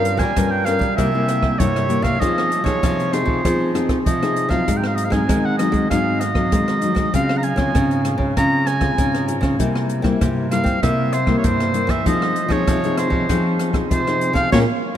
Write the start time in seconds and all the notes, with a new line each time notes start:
Already playing: G2 G3 C#4 F4 A#4 F5
0.05 closed hi-hat
0.17 G3 G#5, kick, cross-stick, closed hi-hat
0.36 G2 G3 C#4 F4 A#4, kick, cross-stick, closed hi-hat
0.51 G5
0.65 C#4 F4 A#4 F5, cross-stick, closed hi-hat
0.79 G3, kick, closed hi-hat
0.96 C3 G3 A#3 E4 E5, kick, cross-stick, closed hi-hat
1.14 G3 A#3 E4
1.28 cross-stick, closed hi-hat
1.43 kick, cross-stick
1.59 G2 C3 G3 A#3 E4 C#5, kick, closed hi-hat
1.76 cross-stick, closed hi-hat
1.89 G3 A#3 E4, closed hi-hat
2.02 C3 F5, kick, cross-stick, closed hi-hat
2.20 F3 C4 D#4 G#4 D#5, kick, closed hi-hat
2.38 cross-stick
2.52 closed hi-hat
2.64 F3 D#4 G#4 C#5, kick, cross-stick, closed hi-hat
2.83 C3 F3, kick, cross-stick, closed hi-hat
3.00 closed hi-hat
3.13 C4 D#4 G#4 C5, cross-stick, closed hi-hat
3.25 F3, kick
3.45 F3 C4 D#4 G#4, kick, cross-stick, closed hi-hat
3.74 C4 D#4 G#4, cross-stick, closed hi-hat
3.89 kick, cross-stick, closed hi-hat
4.06 C3 F3 D#5, kick, closed hi-hat
4.22 C4 D#4 G#4, cross-stick, closed hi-hat
4.36 closed hi-hat
4.49 F3 F#3 C4 D#4 F5, kick, cross-stick, closed hi-hat
4.68 G#2 G#3, kick, closed hi-hat
4.77 G5
4.84 F5, cross-stick
4.96 D#5, closed hi-hat
5.05 F5
5.10 F#3 G#3 C4 D#4 G#5, kick, cross-stick, closed hi-hat
5.29 D#3 G#3, kick, cross-stick, closed hi-hat
5.46 F#5
5.58 F#3 C4 D#4 D#5, cross-stick, closed hi-hat
5.72 G#3, kick, closed hi-hat
5.91 G#2 F#3 G#3 C4 D#4 F5, kick, cross-stick, closed hi-hat
6.20 D#5, cross-stick, closed hi-hat
6.35 F#3 C4 D#4, kick, cross-stick
6.52 D#3 G#3, kick, closed hi-hat
6.68 cross-stick, closed hi-hat
6.82 F#3 C4 D#4, closed hi-hat
6.95 G#3, kick, cross-stick, closed hi-hat
7.14 C#3 G#3 C4 F4 F5, kick, closed hi-hat
7.29 cross-stick
7.38 A#5
7.43 G#5, closed hi-hat
7.56 C#3 G#3 C4 F4, kick, cross-stick, closed hi-hat
7.75 G#2 C#3, kick, cross-stick, closed hi-hat
7.91 closed hi-hat
8.05 G#3 C4 F4, cross-stick, closed hi-hat
8.18 C#3, kick
8.37 C#3 G#3 C4 F4 A#5, kick, cross-stick, closed hi-hat
8.67 G#5, cross-stick, closed hi-hat
8.81 G#3 C4 F4, kick, cross-stick, closed hi-hat
8.98 G#2 C#3, kick, closed hi-hat
9.14 cross-stick, closed hi-hat
9.28 G#3 C4 F4, closed hi-hat
9.41 C#3, kick, cross-stick, closed hi-hat
9.59 C3 G3 A#3 E4, kick, closed hi-hat
9.75 cross-stick
9.89 closed hi-hat
10.02 G3 A#3 C4 E4, kick, cross-stick, closed hi-hat
10.21 G2 C3, kick, cross-stick, closed hi-hat
10.51 G3 A#3 E4 F5, cross-stick, closed hi-hat
10.64 C4, kick, closed hi-hat
10.83 C3 G3 A#3 E4 E5, kick, cross-stick, closed hi-hat
11.13 C5, cross-stick, closed hi-hat
11.27 G3 A#3 E4, kick, cross-stick
11.39 C#5
11.44 G2 C3 C5, kick, closed hi-hat
11.60 cross-stick, closed hi-hat
11.74 G3 A#3 E4, closed hi-hat
11.87 E3 E5, kick, cross-stick, closed hi-hat
12.06 F3 C4 D#4 G#4 D#5, kick, closed hi-hat
12.22 cross-stick
12.36 closed hi-hat
12.49 F3 C4 D#4 G#4 C#5, kick, cross-stick, closed hi-hat
12.67 C3 F3, kick, cross-stick, closed hi-hat
12.84 C4 D#4 G#4, closed hi-hat
12.97 C5, cross-stick, closed hi-hat
13.10 F3, kick
13.29 F3 C4 D#4 G#4, kick, cross-stick, closed hi-hat
13.59 cross-stick, closed hi-hat
13.73 C4 D#4 G#4, kick, cross-stick, closed hi-hat
13.91 C3 F3 C5, kick, closed hi-hat
14.07 C4 D#4 G#4, cross-stick, closed hi-hat
14.21 closed hi-hat
14.33 F3 F5, kick, cross-stick, closed hi-hat
14.52 A#2 G#3 A#3 C#4 C#5, kick, snare